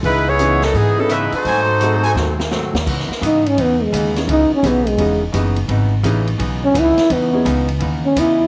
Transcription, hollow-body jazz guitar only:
X:1
M:4/4
L:1/8
Q:"Swing" 1/4=170
K:C#m
V:1 name="Hollow-body jazz guitar" clef=bass
[C,E,B,D] z [C,E,B,D] z [C,E,B,D] z [C,E,B,D] z | [G,,F,A,^B,] z [G,,F,A,B,] z [G,,F,A,B,] z [G,,F,A,B,] z | [C,E,B,D] z [C,E,B,D] z [C,E,B,D] z [C,E,B,D] z | [C,E,B,D] z [C,E,B,D] z [C,E,B,D] z [C,E,B,D] z |
[C,E,B,D] z [C,E,B,D] z [C,E,B,D] z [C,E,B,D] z | [C,E,B,D] z [C,E,B,D] z [C,E,B,D] z [C,E,B,D] z |]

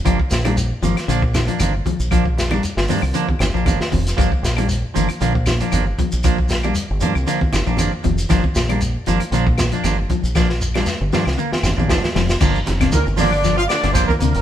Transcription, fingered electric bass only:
X:1
M:4/4
L:1/16
Q:"Swing 16ths" 1/4=117
K:Gm
V:1 name="Fingered electric bass" clef=bass
G,,, z B,,,4 G,,, z B,,,4 G,,,2 z B,,,- | B,,,4- B,,, G,,, G,, C,, z2 G,,, B,,, G,,, z F,,,2 | G,,, z B,,,4 G,,, z B,,,4 G,,,2 z B,,,- | B,,,4- B,,, G,,, G,, C,, z2 G,,, B,,, G,,, z F,,,2 |
G,,, z B,,,4 G,,, z B,,,4 G,,,2 z B,,,- | B,,,4- B,,, G,,, G,, C,, z2 G,,, B,,, G,,, z F,,,2 | G,,,2 F,,,2 D,, G,,,6 G,,,2 z D,, F,,, |]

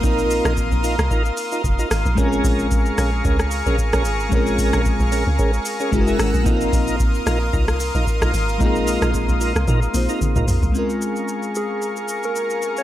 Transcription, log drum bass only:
X:1
M:4/4
L:1/16
Q:"Swing 16ths" 1/4=112
K:Bbm
V:1 name="Log drum bass" clef=bass
B,,,3 B,,,2 B,,,2 C,, z4 F,,, z A,,, B,,, | B,,,2 B,,,4 B,,,2 D,,3 B,,, z B,,, A,,,2 | B,,,3 B,,,2 B,,,2 D,, z4 G,,,2 A,,, B,,, | B,,,2 B,,,4 B,,,2 C,,3 B,,, z B,,, A,,,2 |
B,,,3 B,,,2 B,,,2 C,, B,, z B,,, z2 C,, B,,, B,,, | z16 |]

